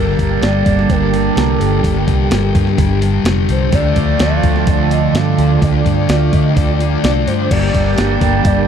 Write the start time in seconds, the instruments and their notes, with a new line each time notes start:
Already playing: fingered electric bass G1, distorted electric guitar G2 D3 G3, clean electric guitar G3 A#3 D4 A4, string machine G4 G5, soft synth lead A#4
0.19 fingered electric bass G1, kick, open hi-hat
0.42 fingered electric bass G1, distorted electric guitar G2 D3 G3, soft synth lead D5, snare, open hi-hat
0.66 fingered electric bass G1, kick, open hi-hat
0.79 snare
0.89 fingered electric bass G1, distorted electric guitar G2 D3 G3, soft synth lead A#4, kick, open hi-hat
1.13 distorted electric guitar D3 G3, open hi-hat
1.36 fingered electric bass C2, distorted electric guitar G2 D3 G3, soft synth lead A#4, snare, open hi-hat
1.60 fingered electric bass G1, soft synth lead A4, open hi-hat
1.83 fingered electric bass G1, distorted electric guitar G2 D3 G3, kick, open hi-hat
2.08 fingered electric bass C2, kick, open hi-hat
2.30 fingered electric bass G1, distorted electric guitar G2 D3 G3, snare, open hi-hat
2.55 fingered electric bass G2, kick, open hi-hat
2.67 snare
2.78 fingered electric bass G1, distorted electric guitar G2 D3 G3, kick, open hi-hat
3.01 distorted electric guitar D3 G3, open hi-hat
3.24 fingered electric bass F1, distorted electric guitar G2 D3 G3, snare, open hi-hat
3.48 fingered electric bass C2, soft synth lead C5, open hi-hat
3.72 fingered electric bass D2, distorted electric guitar D3 A3 D4, clean electric guitar D3 F3 A3 D4, string machine F4 D5, soft synth lead D5, kick, open hi-hat
3.76 clean electric guitar A4
3.96 fingered electric bass D2, kick, open hi-hat
4.19 fingered electric bass D2, distorted electric guitar D3 A3 D4, soft synth lead F5, snare, open hi-hat
4.43 fingered electric bass D2, kick, open hi-hat
4.56 snare
4.67 fingered electric bass D2, distorted electric guitar D3 A3 D4, soft synth lead D5, kick, open hi-hat
4.91 distorted electric guitar A3 D4, soft synth lead D#5, open hi-hat
5.14 fingered electric bass G2, distorted electric guitar D3 A3 D4, soft synth lead F5, snare, open hi-hat
5.38 fingered electric bass D2, open hi-hat
5.62 fingered electric bass D2, distorted electric guitar D3 A3 D4, soft synth lead D5, kick, open hi-hat
5.86 fingered electric bass G2, kick, open hi-hat
6.09 fingered electric bass D2, distorted electric guitar D3 A3 D4, snare, open hi-hat
6.33 fingered electric bass D3, soft synth lead D#5, kick, open hi-hat
6.56 fingered electric bass D2, distorted electric guitar D3 A3 D4, soft synth lead D5, kick, open hi-hat
6.80 distorted electric guitar A3 D4, open hi-hat
7.03 fingered electric bass C2, distorted electric guitar D3 A3 D4, soft synth lead D5, snare, open hi-hat
7.27 fingered electric bass G2, soft synth lead C5, open hi-hat
7.50 fingered electric bass G1, distorted electric guitar G2 D3 G3, clean electric guitar G3 A#3 D4 A4, string machine A#3 G4, soft synth lead D5, kick, crash
7.74 fingered electric bass G1, kick, open hi-hat
7.97 fingered electric bass G1, distorted electric guitar G2 D3 G3, soft synth lead G5, snare, open hi-hat
8.21 fingered electric bass G1, kick, open hi-hat
8.44 fingered electric bass G1, distorted electric guitar G2 D3 G3, soft synth lead D5, kick, open hi-hat